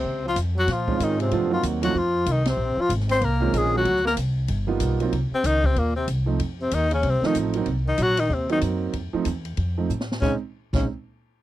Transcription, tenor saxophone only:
X:1
M:4/4
L:1/8
Q:"Swing" 1/4=189
K:Bbm
V:1 name="Tenor saxophone"
C F z G F2 E C- | C F z G F2 E C- | C F z c B2 A G- | G ^A z6 |
z C E C B, C z2 | z C E D C E z2 | z E G E C E z2 | z8 |
D z2 D z4 |]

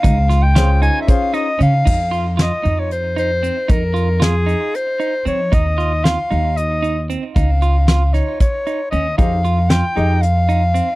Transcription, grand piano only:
X:1
M:7/8
L:1/8
Q:1/4=115
K:Fm
V:1 name="Grand piano"
z2 [DFAc]2 [DFAc] z2 | z6 z | z6 z | z6 z |
z6 z | [EGAc] z2 [EGAe] z3 |]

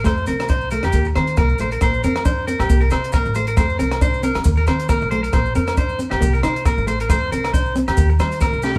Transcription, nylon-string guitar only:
X:1
M:4/4
L:1/8
Q:"Swing 16ths" 1/4=137
K:Bb
V:1 name="Nylon-string guitar"
A, C z A, B, C B, A, | B, C D C B, C B, A, | A, C D C B, C B, A, | B, C D C B, E B, A, |
A, C D C B, G, B, A, |]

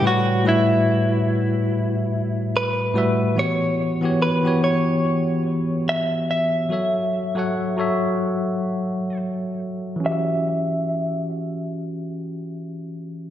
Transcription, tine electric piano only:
X:1
M:4/4
L:1/16
Q:"Swing 16ths" 1/4=72
K:Edor
V:1 name="Tine electric piano"
[A,,G,FBc] z [A,,G,FBe]4- [A,,G,FBe] z6 z [A,,G,FBe] z | [E,B,FGc]2 z [E,B,FGc] z [E,B,FGc]4- [E,B,FGc] z6 | [F,FAce]2 z [F,FAcf] z [F,FAce]4- [F,FAce] z6 | [E,CFGe]16 |]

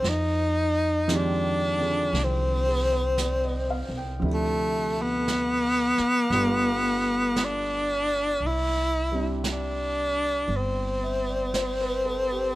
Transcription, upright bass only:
X:1
M:4/4
L:1/8
Q:"Swing" 1/4=57
K:C
V:1 name="Upright bass" clef=bass
F,,4 C,,3 C,, | D,,3 z G,,,4 | C,,4 G,,,4 |]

